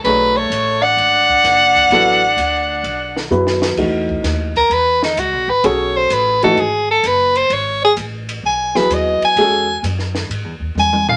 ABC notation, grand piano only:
X:1
M:4/4
L:1/8
Q:"Swing" 1/4=129
K:Elyd
V:1 name="Grand piano"
[=A,=DGc]4- [A,DGc] z3 | [F,B,E=A] z4 z [F,B,EB]2 | [K:E] [E,A,DF]3 z4 z | [CFGA]3 [E,A,DF] z4 |
z4 z [F,B,EG]3 | [G,CFA] z6 z |]